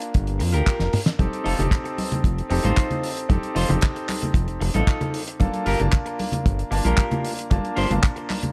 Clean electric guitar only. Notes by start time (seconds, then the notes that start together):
0.39 muted clean electric guitar stroke
0.52 F4 G4 A#4
1.44 D#4 F4 A4
1.71 muted clean electric guitar stroke
1.84 muted clean electric guitar stroke
1.97 muted clean electric guitar stroke
2.50 muted clean electric guitar stroke
2.63 D#4 F4 C5
3.55 D#4 F4 C5
3.95 muted clean electric guitar stroke
4.08 muted clean electric guitar stroke
4.61 muted clean electric guitar stroke
4.74 D#4 F4 A4
5.66 F4 G4 A#4
6.06 muted clean electric guitar stroke
6.19 muted clean electric guitar stroke
6.71 muted clean electric guitar stroke
6.85 F4 G4 A#4
7.76 F4 G4 C5
8.03 muted clean electric guitar stroke
8.16 muted clean electric guitar stroke
8.29 muted clean electric guitar stroke